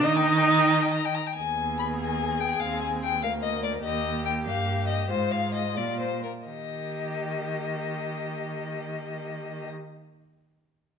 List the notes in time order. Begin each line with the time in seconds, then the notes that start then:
0.03 D#3 D#4 D#5 A#5
0.16 G5
0.28 A#5
0.38 G5
0.50 A#5
0.60 G5
0.70 A#5
0.82 G5
0.93 A#5
1.05 G5
1.15 A#5
1.27 G5
1.36 D#2 B3 G#4 G#5
1.79 B5
2.01 G#5
2.40 G5
2.60 D#2 C4 F5
2.81 G#5
3.03 G5
3.23 D2 A#3 A#4 F5
3.43 D#5
3.64 D5
3.84 D#2 A#3 G4 D#5
4.25 G5
4.46 G2 F5
4.88 D#5
5.09 G#2 G#3 F4 C5
5.32 F5
5.54 D#5
5.77 A#2 G3 F4 D5
6.00 C5
6.23 A#4
6.47 D#3 A#3 G4 D#5